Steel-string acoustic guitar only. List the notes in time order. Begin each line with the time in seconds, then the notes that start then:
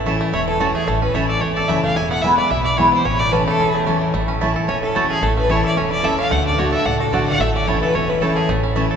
Already playing: A2
0.06 E3 A3 C#4 E4
0.33 E2
0.60 E3 A3 C#4 E4
0.88 A2
1.14 E3 A3 C#4 E4
1.42 E2
1.69 E3 A3 C#4 E4
1.97 E2
2.23 E3 G#3 B3 E4
2.51 B2
2.78 E3 G#3 B3 E4
3.05 A2
3.32 E3 A3 C#4 E4
3.60 E2
3.87 E3 A3 C#4 E4
4.15 A2
4.42 E3 A3 C#4 E4
4.69 E2
4.95 E3 A3 C#4 E4
5.23 A2
5.49 E3 A3 C#4 E4
5.77 E2
6.03 E3 A3 C#4 E4
6.31 D3
6.57 D3 A3 D4 F#4
6.86 A2
7.12 D3 A3 D4 F#4
7.41 A2
7.67 E3 A3 C#4 E4
7.95 E2
8.21 E3 A3 C#4 E4
8.49 A2
8.75 E3 A3 C#4 E4